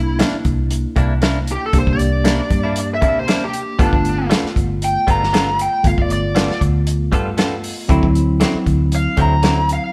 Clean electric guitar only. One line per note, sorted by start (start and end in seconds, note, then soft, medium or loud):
0.19 0.35 C3 medium
0.19 0.36 A#3 medium
0.19 0.36 D4 medium
0.19 0.36 E4 medium
0.96 1.12 C3 medium
0.96 1.13 A#3 medium
0.96 1.13 D4 medium
0.96 1.13 E4 medium
1.22 1.38 C3 medium
1.22 1.38 A#3 medium
1.22 1.39 D4 medium
1.22 1.39 E4 medium
2.24 2.41 C3 medium
2.24 2.41 A#3 medium
2.24 2.41 D4 medium
2.24 2.41 E4 medium
2.63 2.80 A#3 soft
2.63 2.79 D4 soft
2.63 2.79 E4 medium
3.01 3.18 C3 medium
3.01 3.18 A#3 medium
3.01 3.18 D4 medium
3.01 3.19 E4 medium
3.27 3.43 C3 medium
3.27 3.44 A#3 medium
3.27 3.44 D4 medium
3.27 3.44 E4 medium
3.79 3.95 G3 medium
3.79 3.95 B3 medium
3.79 3.95 F4 medium
3.79 3.96 A4 medium
4.30 4.46 G3 medium
4.30 4.46 B3 medium
4.30 4.47 F4 medium
4.30 4.47 A4 medium
5.07 5.23 G3 medium
5.07 5.23 B3 medium
5.07 5.24 F4 medium
5.07 5.24 A4 medium
5.33 5.49 G3 medium
5.33 5.49 B3 medium
5.33 5.49 F4 medium
5.33 5.50 A4 medium
6.35 6.51 G3 medium
6.35 6.52 B3 medium
6.35 6.52 F4 medium
6.35 6.52 A4 medium
7.12 7.28 G3 medium
7.12 7.29 B3 medium
7.12 7.29 F4 medium
7.12 7.29 A4 medium
7.37 7.54 G3 medium
7.37 7.54 B3 medium
7.37 7.54 F4 medium
7.37 7.55 A4 medium
7.89 8.05 D3 medium
7.89 8.06 F#3 medium
7.89 8.06 C4 medium
7.89 8.06 E4 medium
8.40 8.56 D3 medium
8.40 8.57 F#3 medium
8.40 8.57 C4 medium
8.40 8.57 E4 medium
9.17 9.33 D3 medium
9.17 9.34 F#3 medium
9.17 9.34 C4 medium
9.17 9.34 E4 medium
9.43 9.59 D3 medium
9.43 9.59 F#3 medium
9.43 9.60 C4 medium
9.43 9.60 E4 medium